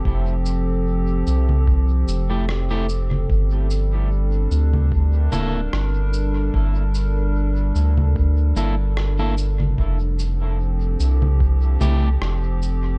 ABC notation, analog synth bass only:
X:1
M:4/4
L:1/8
Q:"Swing 16ths" 1/4=74
K:Gdor
V:1 name="Analog synth bass" clef=bass
F,,,3 C,,2 F,,,3 | G,,,3 D,,2 D,,, G,,,2 | G,,,3 D,,2 G,,,3 | F,,,3 C,,2 C,, F,,,2 |]